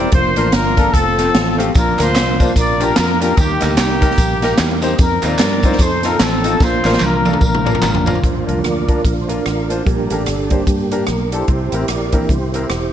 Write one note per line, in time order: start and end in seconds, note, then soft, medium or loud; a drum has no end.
0.00 0.11 G3 medium
0.00 0.10 C4 medium
0.00 0.10 E4 medium
0.00 0.11 G4 medium
0.00 0.10 A#4 medium
0.00 0.11 A#4 medium
0.00 0.13 D5 loud
0.12 0.34 F1 medium
0.12 0.93 F3 medium
0.12 0.93 A#3 medium
0.12 0.93 D4 medium
0.12 0.53 F4 medium
0.12 0.93 A#4 medium
0.12 0.51 C5 loud
0.12 kick loud
0.12 closed hi-hat medium
0.36 0.51 A1 medium
0.36 0.46 A#3 medium
0.36 0.47 D4 medium
0.36 0.47 F4 medium
0.36 0.47 A#4 medium
0.36 closed hi-hat medium
0.52 0.88 G1 medium
0.52 0.92 D4 medium
0.52 0.91 F4 medium
0.52 0.94 A#4 loud
0.52 snare loud
0.52 closed hi-hat medium
0.77 0.87 A#3 medium
0.77 0.87 D4 medium
0.77 0.88 F4 medium
0.77 0.88 A4 medium
0.77 kick medium
0.77 closed hi-hat medium
0.93 1.29 F1 loud
0.93 1.74 F3 medium
0.93 1.74 A3 medium
0.93 1.71 C4 medium
0.93 1.74 C4 medium
0.93 1.71 F4 medium
0.93 1.59 A4 loud
0.93 1.74 A4 medium
0.93 kick loud
0.93 closed hi-hat loud
1.18 1.28 A3 medium
1.18 1.28 C4 medium
1.18 1.28 F4 medium
1.18 1.28 A4 medium
1.18 snare soft
1.18 closed hi-hat medium
1.35 1.69 A1 medium
1.35 snare loud
1.35 closed hi-hat medium
1.58 1.68 A3 medium
1.58 1.68 C4 medium
1.58 1.68 F4 medium
1.58 1.69 G4 medium
1.58 closed hi-hat medium
1.74 1.96 A#1 loud
1.74 2.36 A#2 medium
1.74 3.35 F3 medium
1.74 3.34 A#3 medium
1.74 2.52 D4 medium
1.74 3.34 D4 medium
1.74 1.99 F4 medium
1.74 1.98 A#4 medium
1.74 3.35 A#4 medium
1.74 kick loud
1.74 closed hi-hat medium
1.74 tambourine medium
1.98 2.17 D2 loud
1.98 2.09 A#3 medium
1.98 2.09 D4 medium
1.98 2.09 F4 medium
1.98 2.55 F4 medium
1.98 2.09 A#4 medium
1.98 2.53 C5 loud
1.98 clap medium
1.98 closed hi-hat medium
1.98 tambourine soft
2.15 2.51 C2 medium
2.15 snare loud
2.15 clap medium
2.15 closed hi-hat loud
2.15 tambourine medium
2.40 2.50 A#3 medium
2.40 2.50 D4 medium
2.40 2.50 F4 medium
2.40 2.50 C5 medium
2.40 kick medium
2.40 closed hi-hat medium
2.40 tambourine medium
2.56 2.91 A#1 medium
2.56 3.33 F4 medium
2.56 2.81 A#4 medium
2.56 2.81 D5 medium
2.56 kick loud
2.56 closed hi-hat loud
2.56 tambourine medium
2.80 2.90 A#3 medium
2.80 2.90 D4 medium
2.80 2.90 F4 medium
2.80 2.91 G4 medium
2.80 2.96 A#4 medium
2.80 closed hi-hat medium
2.80 tambourine medium
2.96 3.32 F2 medium
2.96 3.19 A#4 medium
2.96 snare loud
2.96 clap medium
2.96 closed hi-hat loud
2.96 tambourine medium
3.20 3.30 A#3 medium
3.20 3.31 D4 medium
3.20 3.31 F4 medium
3.20 3.31 G4 medium
3.20 3.36 A#4 medium
3.20 closed hi-hat medium
3.20 tambourine medium
3.37 3.58 D#2 loud
3.37 3.99 D#3 medium
3.37 4.96 G3 medium
3.37 4.96 A#3 medium
3.37 3.60 A#3 medium
3.37 4.96 D#4 medium
3.37 3.60 D#4 medium
3.37 3.61 G4 medium
3.37 4.96 A#4 medium
3.37 kick loud
3.37 closed hi-hat medium
3.37 tambourine medium
3.61 3.76 D2 medium
3.61 3.71 A#3 medium
3.61 4.79 A#3 medium
3.61 3.71 D#4 medium
3.61 4.79 D#4 medium
3.61 3.71 G4 medium
3.61 4.79 G4 medium
3.61 3.71 A#4 medium
3.61 clap medium
3.61 closed hi-hat medium
3.61 tambourine medium
3.77 4.12 C2 medium
3.77 snare loud
3.77 clap medium
3.77 closed hi-hat medium
3.77 tambourine medium
4.01 4.11 A#3 medium
4.01 4.11 D#4 medium
4.01 4.12 G4 medium
4.01 4.12 A#4 medium
4.01 kick loud
4.01 closed hi-hat medium
4.01 tambourine medium
4.11 snare soft
4.18 4.52 A#1 loud
4.18 kick loud
4.18 closed hi-hat loud
4.18 tambourine medium
4.42 4.52 A#3 loud
4.42 4.52 D#4 medium
4.42 4.53 G4 medium
4.42 4.53 A#4 loud
4.42 4.58 G5 medium
4.42 snare soft
4.42 closed hi-hat medium
4.42 tambourine medium
4.58 4.94 E2 loud
4.58 4.81 F5 medium
4.58 snare loud
4.58 clap medium
4.58 closed hi-hat medium
4.58 tambourine medium
4.82 4.92 A#3 loud
4.82 4.92 D#4 medium
4.82 4.92 G4 medium
4.82 4.93 C5 loud
4.82 4.98 D#5 medium
4.82 closed hi-hat medium
4.82 tambourine medium
4.98 5.20 F2 loud
4.98 5.77 F3 medium
4.98 5.77 C4 medium
4.98 5.77 D#4 medium
4.98 5.05 A4 medium
4.98 5.23 A#4 medium
4.98 kick loud
4.98 closed hi-hat medium
4.98 tambourine medium
5.04 5.81 A#4 medium
5.22 5.37 D#2 medium
5.22 5.33 C4 medium
5.22 5.33 D#4 medium
5.22 5.34 F4 medium
5.22 5.34 A#4 medium
5.22 5.77 A#4 medium
5.22 5.81 D5 loud
5.22 clap medium
5.22 closed hi-hat medium
5.22 tambourine medium
5.38 5.74 G2 medium
5.38 snare loud
5.38 clap medium
5.38 closed hi-hat loud
5.38 tambourine medium
5.63 5.73 C4 medium
5.63 5.74 D#4 medium
5.63 5.74 F4 medium
5.63 5.74 C5 medium
5.63 kick medium
5.63 closed hi-hat medium
5.63 tambourine medium
5.72 snare soft
5.78 6.14 F2 loud
5.78 6.58 F3 medium
5.78 6.59 C4 medium
5.78 6.58 D#4 medium
5.78 6.19 D#4 medium
5.78 5.85 G#4 medium
5.78 6.20 A4 medium
5.78 6.05 C5 medium
5.78 kick loud
5.78 closed hi-hat loud
5.78 tambourine medium
5.83 6.61 A4 medium
6.03 6.14 C4 medium
6.03 6.14 D#4 medium
6.03 6.14 F4 medium
6.03 6.14 A4 medium
6.03 6.20 A#4 medium
6.03 snare soft
6.03 closed hi-hat medium
6.03 tambourine medium
6.19 6.55 A1 loud
6.19 6.58 C4 medium
6.19 6.58 D#4 medium
6.19 6.61 A4 medium
6.19 snare loud
6.19 clap medium
6.19 closed hi-hat loud
6.19 tambourine medium
6.44 6.54 C4 medium
6.44 6.54 D#4 medium
6.44 6.54 F4 medium
6.44 6.55 A4 medium
6.44 closed hi-hat medium
6.44 tambourine medium
6.59 6.81 A#1 loud
6.59 7.22 A#2 medium
6.59 8.19 F3 medium
6.59 8.19 A#3 medium
6.59 8.19 D4 medium
6.59 7.01 F4 medium
6.59 7.81 A#4 medium
6.59 7.02 C5 medium
6.59 kick loud
6.59 snare medium
6.59 tambourine medium
6.84 6.99 A1 medium
6.84 6.95 A#3 medium
6.84 6.95 D4 medium
6.84 6.95 F4 medium
6.84 6.95 A#4 medium
6.84 snare medium
6.84 clap medium
6.84 tambourine medium
6.93 snare medium
7.00 7.36 C2 medium
7.00 7.42 D4 medium
7.00 7.42 F4 medium
7.00 7.43 A#4 medium
7.00 clap medium
7.00 high tom medium
7.00 tambourine medium
7.25 7.35 A#3 medium
7.25 7.35 D4 medium
7.25 7.36 F4 medium
7.25 7.36 A4 medium
7.25 high tom medium
7.25 tambourine medium
7.33 mid tom medium
7.41 7.76 A#1 medium
7.41 8.20 D4 medium
7.41 8.20 F4 medium
7.41 8.04 A#4 medium
7.41 kick loud
7.41 tambourine medium
7.55 mid tom medium
7.65 7.75 A#3 medium
7.65 7.76 D4 medium
7.65 7.76 F4 medium
7.65 7.76 A#4 medium
7.65 mid tom medium
7.65 tambourine medium
7.75 mid tom medium
7.82 8.17 A1 medium
7.82 7.93 A#4 medium
7.82 clap medium
7.82 mid tom loud
7.82 tambourine medium
7.95 floor tom medium
8.06 8.16 A#3 medium
8.06 8.16 D4 medium
8.06 8.62 F4 medium
8.06 8.17 F4 medium
8.06 8.17 A#4 medium
8.06 8.44 C5 loud
8.06 floor tom loud
8.06 tambourine medium
8.15 floor tom medium
8.21 8.44 A#1 medium
8.21 8.84 A#2 medium
8.21 11.45 D3 medium
8.21 9.83 F3 medium
8.21 8.84 F3 soft
8.21 8.84 A#3 soft
8.21 12.93 A#3 medium
8.21 11.44 D4 medium
8.21 8.85 D4 soft
8.21 kick medium
8.21 closed hi-hat medium
8.46 8.62 C2 medium
8.46 8.57 A#3 medium
8.46 8.57 D4 medium
8.46 8.57 F4 medium
8.46 8.58 A#4 medium
8.46 closed hi-hat medium
8.59 8.64 C#5 medium
8.63 8.99 D2 medium
8.63 9.05 F4 medium
8.63 9.06 A#4 medium
8.63 9.02 D5 medium
8.63 cross-stick medium
8.63 closed hi-hat medium
8.88 8.98 A#3 medium
8.88 8.98 D4 medium
8.88 8.98 F4 medium
8.88 8.98 A#4 medium
8.88 kick medium
8.88 closed hi-hat medium
9.05 9.39 A#1 medium
9.05 9.29 D4 medium
9.05 9.29 F4 medium
9.05 9.14 A#4 loud
9.05 kick medium
9.05 closed hi-hat medium
9.21 9.29 C5 medium
9.28 9.38 A#3 medium
9.28 9.38 D4 medium
9.28 9.82 D4 medium
9.28 9.38 F4 medium
9.28 9.82 F4 medium
9.28 9.39 A#4 medium
9.28 9.85 A#4 medium
9.28 cross-stick soft
9.28 closed hi-hat medium
9.46 9.80 A1 medium
9.46 cross-stick medium
9.46 closed hi-hat medium
9.69 9.79 A#3 medium
9.69 9.79 D4 medium
9.69 9.79 F4 medium
9.69 9.80 C5 medium
9.69 closed hi-hat medium
9.85 10.07 A#1 medium
9.85 10.48 A#2 soft
9.85 10.15 G3 soft
9.85 12.93 G3 medium
9.85 10.15 A#3 soft
9.85 10.09 D4 medium
9.85 10.50 G4 medium
9.85 10.11 A#4 medium
9.85 kick loud
9.85 closed hi-hat medium
10.10 10.24 A1 medium
10.10 10.20 A#3 medium
10.10 10.49 D4 medium
10.10 10.20 D4 medium
10.10 10.20 G4 medium
10.10 10.53 A4 medium
10.10 10.21 A#4 medium
10.10 closed hi-hat medium
10.26 10.61 G1 medium
10.26 cross-stick medium
10.26 closed hi-hat medium
10.50 10.65 G3 soft
10.50 11.28 A#3 medium
10.50 10.60 A#3 medium
10.50 10.65 D4 medium
10.50 10.61 D4 medium
10.50 11.10 G4 medium
10.50 10.61 G4 medium
10.50 10.61 C5 medium
10.50 kick medium
10.50 closed hi-hat medium
10.67 11.10 G2 medium
10.67 kick medium
10.67 closed hi-hat medium
10.91 11.01 A#3 medium
10.91 11.01 D4 medium
10.91 11.02 G4 medium
10.91 11.02 A#4 medium
10.91 cross-stick soft
10.91 closed hi-hat medium
11.07 11.43 B1 medium
11.07 11.31 A#4 medium
11.07 cross-stick loud
11.07 closed hi-hat medium
11.32 11.42 A#3 medium
11.32 11.42 D4 medium
11.32 12.10 E4 medium
11.32 11.89 G4 medium
11.32 11.42 G4 medium
11.32 11.42 A4 medium
11.32 11.86 C5 medium
11.32 closed hi-hat medium
11.48 11.69 C2 medium
11.48 12.10 C3 medium
11.48 12.93 C4 medium
11.48 12.93 E4 medium
11.48 kick loud
11.48 closed hi-hat medium
11.72 11.86 A1 medium
11.72 11.82 C4 medium
11.72 11.83 E4 medium
11.72 11.83 G4 medium
11.72 11.83 A#4 medium
11.72 closed hi-hat medium
11.88 12.23 A#1 medium
11.88 12.29 G4 medium
11.88 12.22 A#4 medium
11.88 12.20 D5 medium
11.88 cross-stick medium
11.88 closed hi-hat medium
12.12 12.38 E3 soft
12.12 12.38 A#3 soft
12.12 12.23 C4 medium
12.12 12.38 D4 medium
12.12 12.23 E4 medium
12.12 12.23 G4 medium
12.12 12.23 A#4 medium
12.12 kick medium
12.12 closed hi-hat medium
12.23 12.31 A#4 medium
12.29 12.64 C2 medium
12.29 12.93 E4 medium
12.29 12.93 G4 medium
12.29 12.92 C5 medium
12.29 kick medium
12.29 closed hi-hat medium
12.54 12.64 C4 medium
12.54 12.64 E4 medium
12.54 12.64 G4 medium
12.54 12.64 A#4 medium
12.54 cross-stick soft
12.54 closed hi-hat medium
12.70 12.93 E1 medium
12.70 cross-stick loud
12.70 closed hi-hat medium